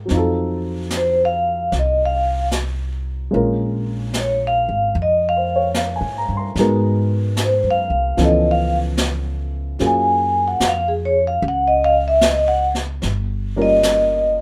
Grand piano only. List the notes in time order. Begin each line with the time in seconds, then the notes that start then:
Already playing: A#4 G5
0.06 F#3 C4
0.11 D#4 F4
0.17 A4
3.31 G#3 A#3 C#4 F4
3.35 A#4
5.36 C5
5.56 C#5
5.76 F5
5.96 G#5
6.18 A#5
6.37 C6
6.59 G#3 B3 D#4 F#4 A#4
8.17 E3 F3 B3 C#4
8.21 A4
9.80 A#3 C#4 F4 F#4 G#4
13.56 G3 A#3 C#4 F4 A#4